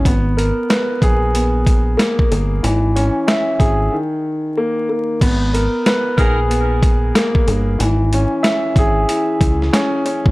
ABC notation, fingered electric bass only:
X:1
M:4/4
L:1/16
Q:"Swing 16ths" 1/4=93
K:G#m
V:1 name="Fingered electric bass" clef=bass
G,,,3 z3 A,,,6 z2 =G,,,2 | G,,,3 z3 G,,,2 z8 | G,,,3 z3 A,,,6 z2 =G,,,2 | G,,,3 z3 G,,,2 z2 C,,2 z3 =G,,, |]